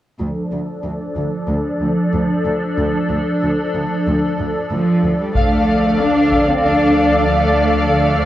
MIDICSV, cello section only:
0, 0, Header, 1, 2, 480
1, 0, Start_track
1, 0, Key_signature, -1, "minor"
1, 0, Tempo, 645161
1, 147, Time_signature, 4, 2, 24, 8
1, 6139, End_track
2, 0, Start_track
2, 0, Title_t, "Cello section"
2, 0, Program_c, 0, 48
2, 147, Note_on_c, 0, 38, 44
2, 206, Note_off_c, 0, 38, 0
2, 387, Note_on_c, 0, 38, 29
2, 447, Note_off_c, 0, 38, 0
2, 625, Note_on_c, 0, 38, 31
2, 684, Note_off_c, 0, 38, 0
2, 866, Note_on_c, 0, 38, 30
2, 925, Note_off_c, 0, 38, 0
2, 1101, Note_on_c, 0, 38, 43
2, 1161, Note_off_c, 0, 38, 0
2, 1350, Note_on_c, 0, 38, 36
2, 1409, Note_off_c, 0, 38, 0
2, 1589, Note_on_c, 0, 38, 39
2, 1649, Note_off_c, 0, 38, 0
2, 1827, Note_on_c, 0, 38, 38
2, 1887, Note_off_c, 0, 38, 0
2, 2070, Note_on_c, 0, 38, 53
2, 2130, Note_off_c, 0, 38, 0
2, 2311, Note_on_c, 0, 38, 36
2, 2371, Note_off_c, 0, 38, 0
2, 2549, Note_on_c, 0, 38, 42
2, 2609, Note_off_c, 0, 38, 0
2, 2793, Note_on_c, 0, 38, 36
2, 2853, Note_off_c, 0, 38, 0
2, 3033, Note_on_c, 0, 38, 50
2, 3092, Note_off_c, 0, 38, 0
2, 3267, Note_on_c, 0, 38, 36
2, 3326, Note_off_c, 0, 38, 0
2, 3504, Note_on_c, 0, 53, 56
2, 3506, Note_on_c, 0, 38, 38
2, 3565, Note_off_c, 0, 38, 0
2, 3746, Note_on_c, 0, 38, 38
2, 3806, Note_off_c, 0, 38, 0
2, 3840, Note_off_c, 0, 53, 0
2, 3868, Note_on_c, 0, 55, 47
2, 3985, Note_off_c, 0, 55, 0
2, 3986, Note_on_c, 0, 57, 52
2, 4457, Note_off_c, 0, 57, 0
2, 4463, Note_on_c, 0, 62, 59
2, 4825, Note_off_c, 0, 62, 0
2, 4827, Note_on_c, 0, 60, 53
2, 4940, Note_on_c, 0, 62, 56
2, 4947, Note_off_c, 0, 60, 0
2, 5423, Note_off_c, 0, 62, 0
2, 5424, Note_on_c, 0, 57, 58
2, 5893, Note_off_c, 0, 57, 0
2, 5902, Note_on_c, 0, 57, 59
2, 6139, Note_off_c, 0, 57, 0
2, 6139, End_track
0, 0, End_of_file